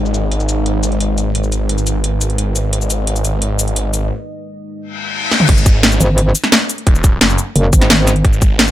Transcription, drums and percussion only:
0.06 shaker
0.14 closed hi-hat, shaker
0.32 closed hi-hat
0.40 closed hi-hat, shaker
0.49 closed hi-hat, shaker
0.66 closed hi-hat
0.83 closed hi-hat, shaker
0.92 closed hi-hat
1.00 closed hi-hat
1.18 closed hi-hat, shaker
1.35 closed hi-hat
1.44 shaker
1.52 closed hi-hat, shaker
1.69 closed hi-hat
1.78 closed hi-hat, shaker
1.87 closed hi-hat, shaker
2.04 closed hi-hat
2.21 closed hi-hat, shaker
2.30 closed hi-hat
2.38 closed hi-hat
2.56 closed hi-hat, shaker
2.73 closed hi-hat
2.81 shaker
2.90 closed hi-hat, shaker
3.07 closed hi-hat
3.16 closed hi-hat, shaker
3.25 closed hi-hat, shaker
3.42 closed hi-hat
3.59 closed hi-hat, shaker
3.68 closed hi-hat
3.76 closed hi-hat
3.94 closed hi-hat, shaker
5.32 snare
5.40 mid tom
5.49 kick, closed hi-hat, crash
5.57 shaker
5.66 kick, closed hi-hat, shaker
5.83 snare, closed hi-hat
5.92 shaker
6.01 closed hi-hat, shaker
6.18 closed hi-hat
6.35 closed hi-hat, shaker
6.44 snare, closed hi-hat
6.52 snare, closed hi-hat
6.69 closed hi-hat, shaker
6.78 closed hi-hat
6.87 kick, closed hi-hat
6.95 shaker
7.04 kick, closed hi-hat, shaker
7.21 snare, closed hi-hat
7.30 shaker
7.38 closed hi-hat, shaker
7.56 closed hi-hat
7.73 kick, closed hi-hat, shaker
7.81 snare, closed hi-hat
7.90 snare, closed hi-hat
8.07 snare, closed hi-hat, shaker
8.16 closed hi-hat
8.25 kick, closed hi-hat
8.33 shaker
8.42 kick, closed hi-hat, shaker
8.59 snare, closed hi-hat
8.68 shaker

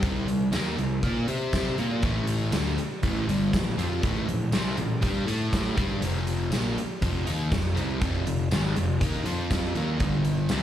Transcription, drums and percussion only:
0.03 kick, closed hi-hat
0.28 closed hi-hat
0.53 snare, closed hi-hat, tambourine
0.78 closed hi-hat
1.03 kick, closed hi-hat
1.28 closed hi-hat
1.53 kick, snare, closed hi-hat, tambourine
1.78 closed hi-hat
2.03 kick, closed hi-hat
2.27 closed hi-hat
2.52 snare, closed hi-hat, tambourine
2.78 closed hi-hat
3.03 kick, closed hi-hat
3.29 closed hi-hat
3.53 kick, snare, closed hi-hat, tambourine
3.79 closed hi-hat
4.03 kick, closed hi-hat
4.29 closed hi-hat
4.52 snare, closed hi-hat, tambourine
4.77 closed hi-hat
5.02 kick, closed hi-hat
5.28 closed hi-hat
5.53 kick, snare, closed hi-hat, tambourine
5.77 kick, closed hi-hat
6.02 closed hi-hat
6.27 closed hi-hat
6.52 snare, closed hi-hat, tambourine
6.78 closed hi-hat
7.02 kick, closed hi-hat
7.27 closed hi-hat
7.52 kick, snare, closed hi-hat, tambourine
7.77 closed hi-hat
8.02 kick, closed hi-hat
8.27 closed hi-hat
8.51 snare, closed hi-hat, tambourine
8.76 closed hi-hat
9.01 kick, closed hi-hat
9.26 closed hi-hat
9.51 kick, snare, closed hi-hat, tambourine
9.75 closed hi-hat
10.00 kick, closed hi-hat
10.25 closed hi-hat
10.49 snare, closed hi-hat, tambourine

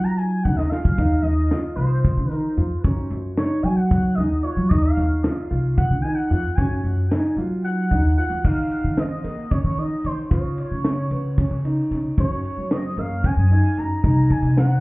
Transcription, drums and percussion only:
0.19 closed hi-hat
0.45 kick, closed hi-hat
0.59 snare
0.72 snare
0.85 kick
0.98 kick, closed hi-hat
1.25 snare, closed hi-hat
1.51 snare, closed hi-hat
1.78 closed hi-hat
2.04 kick, closed hi-hat
2.31 closed hi-hat
2.58 closed hi-hat
2.84 kick, closed hi-hat
3.11 closed hi-hat
3.37 snare, closed hi-hat
3.64 closed hi-hat
3.91 kick, closed hi-hat
4.18 snare, closed hi-hat
4.44 closed hi-hat
4.71 kick, closed hi-hat
4.98 snare, closed hi-hat
5.24 snare, closed hi-hat
5.51 closed hi-hat
5.78 kick, closed hi-hat
6.04 closed hi-hat
6.31 closed hi-hat
6.58 kick, closed hi-hat
6.85 closed hi-hat
7.11 snare, closed hi-hat
7.38 closed hi-hat
7.65 closed hi-hat
7.91 kick, closed hi-hat
8.18 closed hi-hat
8.45 kick, crash
8.71 ride
8.97 snare, ride
9.24 snare, ride
9.51 kick, snare, ride
9.77 ride
10.04 ride
10.31 kick, ride
10.58 ride
10.84 snare, ride
11.11 ride
11.38 kick, ride
11.65 ride
11.92 snare, ride
12.18 kick, ride
12.45 ride
12.71 snare, ride
12.98 ride
13.24 kick, ride
13.51 ride
13.78 snare, ride
14.04 kick, ride
14.30 kick, ride
14.58 snare, ride

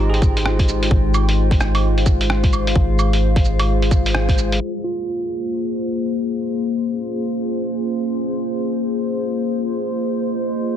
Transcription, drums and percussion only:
0.14 closed hi-hat
0.22 kick, cabasa
0.37 closed hi-hat
0.45 cross-stick
0.59 kick, closed hi-hat
0.68 cabasa
0.83 closed hi-hat
0.91 kick
1.14 cabasa, claves
1.29 closed hi-hat
1.51 kick, closed hi-hat
1.61 cross-stick, cabasa
1.75 closed hi-hat, claves
1.98 closed hi-hat
2.06 kick, cabasa
2.21 closed hi-hat
2.30 cross-stick
2.44 kick, closed hi-hat
2.53 cabasa, claves
2.67 closed hi-hat
2.76 kick
2.99 cabasa, claves
3.13 closed hi-hat
3.36 kick, closed hi-hat
3.45 cabasa
3.59 closed hi-hat, claves
3.82 closed hi-hat
3.91 kick, cabasa
4.06 closed hi-hat, cabasa
4.14 cross-stick
4.29 kick, closed hi-hat
4.38 cabasa
4.52 closed hi-hat

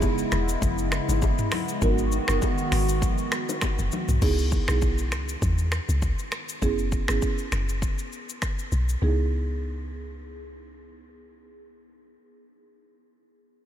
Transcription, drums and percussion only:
0.02 kick, high bongo, shaker
0.18 shaker
0.32 finger snap, cross-stick, shaker
0.49 shaker
0.62 kick, low conga, shaker
0.78 shaker
0.92 finger snap, cross-stick, shaker
1.09 low bongo, shaker
1.22 kick, high bongo, shaker
1.39 mid tom, shaker
1.52 finger snap, cross-stick, open hi-hat, low bongo, low conga, shaker
1.69 shaker
1.82 kick, low conga, shaker
1.98 shaker
2.12 low bongo, shaker
2.28 finger snap, cross-stick, shaker
2.42 kick, high bongo, shaker
2.58 shaker
2.72 finger snap, cross-stick, open hi-hat, shaker
2.89 shaker
3.02 kick, low conga, shaker
3.18 shaker
3.32 finger snap, cross-stick, shaker
3.49 low bongo, shaker
3.61 finger snap, kick, cross-stick, high bongo, shaker
3.79 shaker
3.92 low bongo, low conga, shaker
4.09 mid tom, shaker
4.22 kick, crash, shaker
4.38 shaker
4.52 kick, shaker
4.68 finger snap, cross-stick, shaker
4.82 kick, shaker
4.98 shaker
5.12 finger snap, cross-stick, shaker
5.29 shaker
5.42 kick, shaker
5.58 shaker
5.72 finger snap, cross-stick, shaker
5.89 shaker
6.02 kick, shaker
6.19 shaker
6.32 finger snap, cross-stick, shaker
6.49 shaker
6.62 kick, shaker
6.79 shaker
6.92 kick, shaker
7.08 finger snap, cross-stick, shaker
7.22 kick, shaker
7.38 shaker
7.52 finger snap, cross-stick, shaker
7.69 shaker
7.82 kick, shaker
7.98 shaker
8.13 shaker
8.29 shaker
8.42 finger snap, kick, cross-stick, shaker
8.59 shaker
8.72 shaker
8.89 shaker

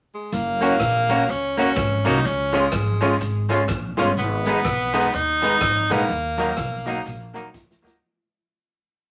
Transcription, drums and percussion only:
0.32 closed hi-hat
0.61 closed hi-hat
0.80 kick, cross-stick, closed hi-hat
1.09 closed hi-hat
1.29 closed hi-hat
1.58 closed hi-hat
1.76 kick, cross-stick, closed hi-hat
2.06 closed hi-hat
2.14 cross-stick
2.24 closed hi-hat
2.53 closed hi-hat
2.72 kick, cross-stick, closed hi-hat
3.01 closed hi-hat
3.21 closed hi-hat
3.50 closed hi-hat
3.68 kick, cross-stick, closed hi-hat
3.98 closed hi-hat
4.17 closed hi-hat
4.45 closed hi-hat
4.65 kick, cross-stick, closed hi-hat
4.94 closed hi-hat
5.13 closed hi-hat
5.42 closed hi-hat
5.61 kick, cross-stick, closed hi-hat
5.90 closed hi-hat
6.09 closed hi-hat
6.38 closed hi-hat
6.57 kick, cross-stick, closed hi-hat
6.87 closed hi-hat
7.06 closed hi-hat
7.35 closed hi-hat
7.54 kick, snare
7.71 snare
7.86 snare

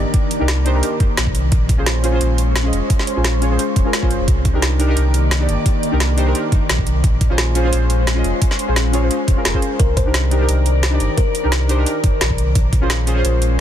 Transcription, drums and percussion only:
0.14 kick, closed hi-hat
0.31 closed hi-hat
0.48 snare, closed hi-hat
0.66 closed hi-hat
0.83 closed hi-hat
1.00 kick, closed hi-hat
1.17 snare, closed hi-hat
1.27 kick
1.35 closed hi-hat
1.52 kick, closed hi-hat
1.69 kick, closed hi-hat
1.86 snare, closed hi-hat
2.04 closed hi-hat
2.21 closed hi-hat
2.38 closed hi-hat
2.56 snare, closed hi-hat
2.73 closed hi-hat
2.90 kick, closed hi-hat
2.99 snare
3.07 closed hi-hat
3.24 snare, closed hi-hat
3.42 closed hi-hat
3.59 closed hi-hat
3.76 kick, closed hi-hat
3.93 snare, closed hi-hat
4.03 kick
4.11 closed hi-hat
4.28 kick, closed hi-hat
4.45 kick, closed hi-hat
4.62 snare, closed hi-hat
4.80 closed hi-hat
4.97 closed hi-hat
5.14 closed hi-hat
5.31 snare, closed hi-hat
5.49 closed hi-hat
5.66 kick, closed hi-hat
5.83 closed hi-hat
6.00 snare, closed hi-hat
6.18 closed hi-hat
6.35 closed hi-hat
6.52 kick, closed hi-hat
6.69 snare, closed hi-hat
6.79 kick
6.87 closed hi-hat
7.04 kick, closed hi-hat
7.21 kick, closed hi-hat
7.38 snare, closed hi-hat
7.55 closed hi-hat
7.73 closed hi-hat
7.90 closed hi-hat
8.07 snare, closed hi-hat
8.24 closed hi-hat
8.42 kick, closed hi-hat
8.51 snare
8.59 closed hi-hat
8.76 snare, closed hi-hat
8.93 closed hi-hat
9.11 closed hi-hat
9.28 kick, closed hi-hat
9.45 snare, closed hi-hat
9.54 kick
9.62 closed hi-hat
9.80 kick, closed hi-hat
9.97 kick, closed hi-hat
10.14 snare, closed hi-hat
10.31 closed hi-hat
10.49 closed hi-hat
10.66 closed hi-hat
10.83 snare, closed hi-hat
11.00 closed hi-hat
11.17 kick, closed hi-hat
11.35 closed hi-hat
11.52 snare, closed hi-hat
11.69 closed hi-hat
11.86 closed hi-hat
12.04 kick, closed hi-hat
12.21 snare, closed hi-hat
12.30 kick
12.38 closed hi-hat
12.55 kick, closed hi-hat
12.73 kick, closed hi-hat
12.90 snare, closed hi-hat
13.07 closed hi-hat
13.25 closed hi-hat
13.42 closed hi-hat

